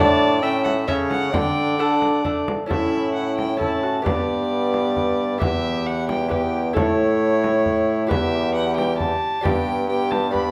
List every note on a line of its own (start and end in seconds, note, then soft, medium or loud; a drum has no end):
0.00 0.39 A2 medium
0.00 0.40 A2 medium
0.00 0.39 D4 medium
0.00 0.43 D4 medium
0.00 0.39 E4 medium
0.00 0.39 G4 medium
0.00 0.44 D5 medium
0.00 0.41 A5 loud
0.42 0.84 A2 medium
0.42 0.90 A2 medium
0.42 0.87 C#4 medium
0.42 0.89 E5 medium
0.42 0.64 G5 loud
0.64 0.72 F#5 loud
0.64 frame drum soft
0.88 1.35 C#3 medium
0.88 1.30 C#3 medium
0.88 1.33 C#4 medium
0.88 1.30 C#4 medium
0.88 1.30 E4 medium
0.88 1.30 A4 medium
0.88 1.33 C#5 medium
0.88 0.96 E5 medium
0.88 frame drum soft
1.10 1.36 F#5 medium
1.10 frame drum medium
1.33 2.48 D3 medium
1.33 2.44 D3 medium
1.33 1.78 D4 medium
1.33 2.45 D5 medium
1.33 1.81 G5 loud
1.33 frame drum medium
1.79 2.21 A3 soft
1.79 2.46 D4 medium
1.79 2.21 D4 soft
1.79 2.21 A4 medium
1.79 2.25 F#5 medium
2.02 frame drum soft
2.25 2.66 A3 soft
2.25 2.67 D4 soft
2.25 2.67 A4 soft
2.25 frame drum medium
2.48 frame drum medium
2.66 4.02 A2 medium
2.66 3.56 C#4 soft
2.66 3.57 C#4 medium
2.66 3.56 E4 soft
2.66 3.57 E4 medium
2.66 3.57 A4 soft
2.70 4.02 A2 medium
2.70 3.12 E5 medium
2.70 frame drum medium
3.15 3.37 F#5 medium
3.38 3.59 G5 medium
3.38 frame drum soft
3.57 4.02 C#4 soft
3.57 4.05 C#4 medium
3.57 4.03 E4 soft
3.57 3.85 E4 medium
3.57 4.04 A4 soft
3.57 4.04 A5 medium
3.61 frame drum soft
3.83 4.05 F#4 medium
4.02 5.37 G2 medium
4.02 5.35 B3 medium
4.02 5.38 B3 medium
4.02 5.36 G4 soft
4.02 5.36 B4 soft
4.02 5.38 D5 medium
4.06 5.38 G2 medium
4.06 5.38 G4 medium
4.06 frame drum medium
4.74 frame drum soft
4.97 frame drum soft
5.38 6.73 E2 medium
5.38 6.72 E2 medium
5.38 6.29 B3 medium
5.38 6.27 E4 soft
5.38 6.27 G4 medium
5.38 6.29 G4 medium
5.38 6.28 B4 medium
5.38 5.88 E5 medium
5.38 frame drum medium
5.86 6.08 F#5 medium
6.09 6.31 G5 loud
6.09 frame drum medium
6.28 6.75 B3 medium
6.28 6.72 E4 soft
6.28 6.74 G4 soft
6.28 6.75 G4 medium
6.28 6.74 B4 soft
6.28 6.75 G5 medium
6.28 frame drum soft
6.73 8.08 A2 medium
6.73 8.07 A2 medium
6.73 8.12 A3 medium
6.73 8.05 E4 medium
6.73 8.08 E4 medium
6.73 8.05 A4 soft
6.73 8.07 C#5 loud
6.73 frame drum medium
7.44 frame drum soft
7.66 frame drum soft
8.07 9.13 E2 medium
8.07 9.15 E2 medium
8.07 9.39 E4 medium
8.07 9.40 G4 medium
8.07 9.40 B4 medium
8.07 8.54 E5 loud
8.11 9.17 B3 medium
8.11 9.42 G4 medium
8.11 frame drum medium
8.55 8.76 F#5 loud
8.77 8.98 G5 medium
8.77 frame drum medium
8.98 9.45 A5 loud
8.98 frame drum soft
9.41 10.51 G2 medium
9.41 10.29 D4 medium
9.41 10.30 G4 medium
9.41 9.89 G4 medium
9.41 10.31 B4 medium
9.41 9.88 G5 loud
9.45 9.87 B3 medium
9.45 frame drum medium
9.89 10.33 B3 medium
9.89 10.33 G4 medium
9.89 10.12 G5 loud
10.11 10.33 A5 medium
10.11 frame drum medium
10.31 10.51 B3 medium
10.31 10.51 D4 soft
10.31 10.51 G4 soft
10.31 10.51 B4 soft
10.31 10.51 B5 loud
10.35 10.51 G4 medium
10.35 frame drum soft